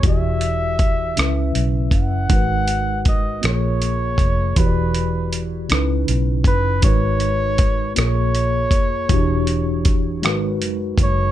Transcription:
<<
  \new Staff \with { instrumentName = "Flugelhorn" } { \time 6/8 \key gis \minor \tempo 4. = 53 e''2 r8 fis''8~ | fis''4 dis''8 cis''4. | b'4 r4. b'8 | cis''4. cis''4.~ |
cis''2 r8 cis''8 | }
  \new Staff \with { instrumentName = "Tine electric piano" } { \time 6/8 \key gis \minor <e e' fis' g' d''>4. <cis cis' e' b' e''>4. | <gis dis' fis' ais' b'>4. <ais eis' gis' ais' cis''>4. | <e e' fis' g' cis'' d''>4. <cis cis' dis' e' b'>4. | <gis dis' fis' ais' b'>4. <ais eis' gis' ais' cis''>4. |
<e d' e' fis' g'>4. <gis dis' fis' ais' b'>4. | }
  \new Staff \with { instrumentName = "Fingered electric bass" } { \clef bass \time 6/8 \key gis \minor e,,4. cis,8 b,,8 fis,,8 | gis,,4. ais,,4 eis,,8 | e,,4. cis,8 b,,8 fis,,8 | gis,,4. ais,,4 eis,,8 |
e,,4. gis,,8 fis,,8 fis,,8 | }
  \new DrumStaff \with { instrumentName = "Drums" } \drummode { \time 6/8 <hh bd>8 hh8 <hh bd>8 <hh ss>8 hh8 <hh bd>8 | <hh bd>8 hh8 <hh bd>8 <hh ss>8 hh8 <hh bd>8 | <hh bd>8 hh8 hh8 <hh ss>8 hh8 <hh bd>8 | <hh bd>8 hh8 <hh bd>8 <hh ss>8 hh8 <hh bd>8 |
<hh bd>8 hh8 <hh bd>8 <hh ss>8 hh8 <hh bd>8 | }
>>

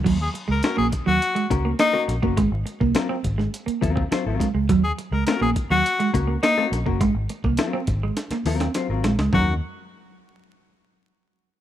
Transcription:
<<
  \new Staff \with { instrumentName = "Tenor saxophone" } { \time 4/4 \key ees \dorian \tempo 4 = 104 r16 aes'16 r16 bes'16 bes'16 aes'16 r16 ges'8. r8 ees'8 r8 | r1 | r16 aes'16 r16 bes'16 bes'16 aes'16 r16 ges'8. r8 ees'8 r8 | r1 |
ges'8 r2. r8 | }
  \new Staff \with { instrumentName = "Clean electric guitar" } { \time 4/4 \key ees \dorian r4 <bes des' ges' bes'>16 r4 r16 <bes des' ges' bes'>16 r8 <bes des' ges' bes'>16 r16 <bes des' ges' bes'>16 | r4 <ges c' f' bes'>16 r4 r16 <ges c' f' bes'>16 r16 <ges c' f' c''>16 <ges c' f' bes'>16 r8 | r4 <bes des' ges' bes'>16 r4 r16 <bes des' ges' bes'>16 r8 <bes des' ges' bes'>16 r16 <bes des' ges' bes'>16 | r4 <ges c' f' bes'>16 r4 r16 <ges c' f' bes'>16 r16 <ges c' f' c''>16 <ges c' f' bes'>16 r8 |
<ges des' ees' bes'>16 r2. r8. | }
  \new Staff \with { instrumentName = "Clean electric guitar" } { \clef bass \time 4/4 \key ees \dorian ges16 r8 aes16 r16 bes16 r16 ges16 r16 aes16 r16 bes16 bes16 r8 bes16 | aes16 r8 bes16 r16 c'16 r16 aes16 r16 bes16 r16 c'16 r8 aes16 aes16 | ges16 r8 aes16 r16 bes16 r16 ges16 r16 aes16 r16 bes16 bes16 r8 bes16 | aes16 r8 bes16 r16 c'16 r16 aes16 r16 bes16 r16 c'16 r8 aes16 aes16 |
ges8 r2. r8 | }
  \new Staff \with { instrumentName = "Fingered electric bass" } { \clef bass \time 4/4 \key ees \dorian ees,8 r16 des,16 r16 bes,,16 r16 ees,16 r8 des,8 r8 bes,,16 ges,,16 | aes,,16 aes,,16 r16 c,16 r8 aes,,8 r8 ees,8 r16 aes,,16 r16 des,16 | ees,8 r16 des,16 r16 bes,,16 r16 ees,16 r8 des,8 r8 bes,,16 ges,,16 | aes,,16 aes,,16 r16 c,16 r8 aes,,8 r8 ees,8 r16 aes,,16 bes,,16 des,16 |
ees,8 r2. r8 | }
  \new DrumStaff \with { instrumentName = "Drums" } \drummode { \time 4/4 <cymc bd>8 hh8 <hh sn>8 <hh bd>16 sn16 hh16 hh16 <hh bd>8 <hh sn>8 <hh sn>16 bd16 | <hh bd>8 hh16 bd16 <hh sn>8 <hh bd>16 sn16 hh16 hh16 <hh bd>16 bd16 <hh sn>8 <hh bd sn>8 | <hh bd>8 hh8 <hh sn>8 <hh bd>16 sn16 hh16 hh16 <hh bd>8 <hh sn>8 <hh sn>16 bd16 | <hh bd>8 hh16 bd16 <hh sn>8 <hh bd>8 <hh sn>16 <hh sn>16 hho16 <hh sn>16 <hh sn>8 <hh sn>16 sn16 |
<bd tomfh>4 r4 r4 r4 | }
>>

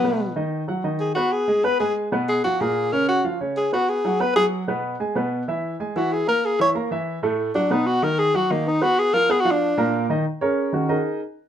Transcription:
<<
  \new Staff \with { instrumentName = "Tenor saxophone" } { \time 4/4 \key ces \lydian \tempo 4 = 188 b4 r2 gis'8 fis'8 | aes'4 ces''8 aes'8 r4 aes'8 ges'8 | aes'4 bes'8 ges'8 r4 aes'8 ges'8 | aes'4 b'8 aes'8 r2 |
r2 r8 ges'8 gis'8 bes'8 | aes'8 des''8 r2 r8 d'8 | dis'8 fis'8 ais'8 aes'8 fis'8 ais8 dis'8 fis'8 | aes'8 bes'8 \tuplet 3/2 { aes'8 ges'8 d'8~ } d'4 r4 |
r1 | }
  \new Staff \with { instrumentName = "Upright piano" } { \time 4/4 \key ces \lydian << { <b, b b'>4 <dis dis' dis''>4 <fis fis' fis''>8 <dis dis' dis''>4 <b b' b''>8~ | <b b' b''>8 <aes aes' aes''>8 <ces' ces'' ces'''>8 <aes aes' aes''>4 <ces ces' ces''>4 <f f' f''>8 | <bes, bes bes'>4 <des des' des''>4 <f f' f''>8 <des des' des''>4 <ces' ces'' ces'''>8~ | <ces' ces'' ces'''>8 <fis fis' fis''>8 <b b' b''>8 <fis fis' fis''>4 <b, b b'>4 <aes aes' aes''>8 |
<b, b b'>4 <e e' e''>4 <gis gis' gis''>8 <e e' e''>4 <bes bes' bes''>8~ | <bes bes' bes''>8 <fes fes' fes''>8 <bes bes' bes''>8 <fes fes' fes''>4 <a, a a'>4 <ges ges' ges''>8 | <b, b b'>4 <dis dis' dis''>4 <fis fis' fis''>8 <dis dis' dis''>4 <b b' b''>8~ | <b b' b''>8 <f f' f''>8 <ces' ces'' ces'''>8 <f f' f''>4 <bes, bes bes'>4 <ees ees' ees''>8 |
r8 <des' aes' bes' des''>4. <ees' aes' bes' ees''>4 r4 | } \\ { r1 | r1 | r1 | r1 |
r1 | r1 | r1 | r1 |
r4. <ees des' ges'>8 r2 | } >> }
>>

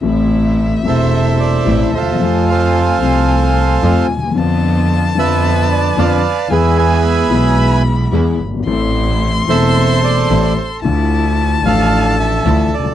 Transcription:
<<
  \new Staff \with { instrumentName = "Violin" } { \time 4/4 \key a \minor \tempo 4 = 111 e''1 | gis''1 | a''1 | gis''4 b''2~ b''8 r8 |
c'''1 | a''1 | }
  \new Staff \with { instrumentName = "Bandoneon" } { \time 4/4 \key a \minor << { r4. e''4 d''4 c''8~ | c''8 f''2. r8 | r4. e''4 d''8 f''4 | e''8 gis''2 r4. |
r4. e''4 d''4 c''8 | r4. f''4 e''4 d''8 | } \\ { r4. <a' c''>4 a'4 <f' a'>8~ | <f' a'>8 <a' c''>2. r8 | r4. b'4. <b' d''>4 | <gis' b'>8 <b' e''>2 r4. |
r4. <a' c''>4 a'4. | r4. a'4 a'4. | } >> }
  \new Staff \with { instrumentName = "String section" } { \time 4/4 \key a \minor <a c' e'>4. <a c' e'>4. <a c' e'>8 r8 | <a c' f'>4. <a c' f'>4. <a c' f'>8 r8 | <b d' f'>4. <b d' f'>4. <b d' f'>8 r8 | <gis b e'>4. <gis b e'>4. <gis b e'>8 r8 |
<a c' e'>4. <a c' e'>4. <a c' e'>8 r8 | <d' e'>4. <e d'>4. <f d' e'>8 r8 | }
  \new Staff \with { instrumentName = "Upright piano" } { \clef bass \time 4/4 \key a \minor <a,, a, c e a e'>4. <e,, e, c e a e'>4. <a,, a, c e a e'>8 r32 d,32 dis,32 e,32 | <f, c f a f'>4. <c, c f a f'>4. <f, c f a f'>8 r32 d,32 dis,32 e,32 | <f, d f b f'>4. <f, d f b f'>4. <f, d f b f'>8 r8 | <e, e gis b gis'>4. <b,, b, e gis b gis'>4. <e, e gis b gis'>8 r32 fis,,32 g,,32 gis,,32 |
<a,, a, e a c' a'>4. <e,, e, e a c' a'>4. <a,, a, e a c' a'>8 r8 | <d, d a d' e' f'>4. <a,, a, f a d' f''>4. <d, d e a d' f'>8 r32 cis,32 d,32 r32 | }
  \new Staff \with { instrumentName = "Double bass" } { \clef bass \time 4/4 \key a \minor a,,4. e,,4. a,,8 dis,8 | f,4. c,4. f,8 dis,8 | f,4. f,4. f,8 r8 | e,4. b,,4. e,8 g,,8 |
a,,4. e,,4. a,,8 r8 | d,4. a,,4. d,8 d,8 | }
>>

